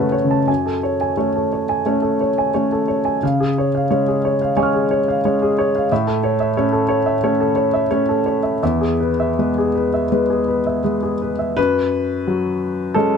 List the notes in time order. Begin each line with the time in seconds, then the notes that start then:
Already playing: F#2 C#3 C#4 B4 C#5 F#5 A5
0.00 A3
0.12 C#5
0.24 C#3
0.31 A5
0.48 F#2 G#5
0.66 A4
0.83 C#5
1.01 G#5
1.17 A3 C#4 C#5
1.36 A4
1.53 C#5
1.69 G#5
1.86 A3 C#4 C#5
2.02 A4
2.21 C#5
2.38 G#5
2.54 A3 C#4 C#5
2.72 A4
2.88 C#5
3.05 G#5
3.23 C#3 F5
3.40 G#4
3.58 C#5
3.75 F5
3.90 G#3 C#4 C#5
4.08 G#4
4.25 C#5
4.42 F5
4.57 G#3 C#4 C#5 G#5 C#6
4.63 F6
4.74 G#4
4.91 C#5
5.08 F5
5.25 G#3 C#4 C#5
5.42 G#4
5.58 C#5
5.75 F5
5.92 A2 E5
6.07 A4
6.24 C#5
6.40 E5
6.57 A3 C#4 C#5
6.72 A4
6.89 C#5
7.06 E5
7.24 A3 C#4 C#5
7.40 A4
7.56 C#5
7.74 E5
7.91 A3 C#4 C#5
8.09 A4
8.26 C#5
8.43 E5
8.63 E2 E5
8.81 G#4
9.00 B4
9.20 E5
9.39 G#3 B3 B4
9.58 G#4
9.75 B4
9.94 E5
10.12 G#3 B3 B4
10.30 G#4
10.48 B4
10.67 E5
10.84 G#3 B3 B4
11.03 G#4
11.22 B4
11.39 E5
11.57 F#2 B4
12.27 F#3
12.94 G#3 C#4 A4